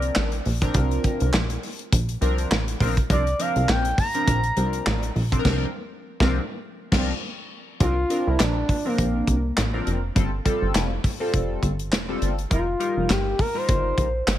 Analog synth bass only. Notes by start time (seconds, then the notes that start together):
Already playing: C2
0.17 A1
0.46 A#1
0.75 C2
1.21 C2
1.34 A#1
1.93 A#1
2.22 C2
2.51 A1
2.81 A#1
3.10 C2
3.56 C2
3.69 A#1
4.28 A#1
4.57 C2
4.87 A1
5.16 A#1
5.45 C2
6.20 C2
6.92 C2
7.81 C2
8.27 C2
8.40 A#1
8.99 A#1
9.28 C2
9.57 A1
9.87 F1
10.16 G1
10.62 G1
10.75 F1
11.34 F1
11.63 G1
11.92 E1
12.22 G1
12.51 F1
12.97 F1
13.10 G1
13.69 G1
13.98 A#1
14.27 G1